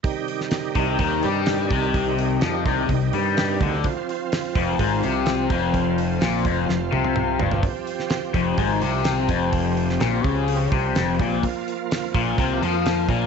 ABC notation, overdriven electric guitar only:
X:1
M:4/4
L:1/8
Q:1/4=126
K:Cm
V:1 name="Overdriven electric guitar" clef=bass
z3 C, E, G,2 C,- | C,2 F, C, C, G,2 D, | z3 F,, A,, C,2 F,,- | F,,2 B,, F,, F,, C,2 G,, |
z3 F,, A,, C,2 F,,- | F,,2 B,, _D,2 C, F,, B,, | z3 B,, C, F,2 B,, |]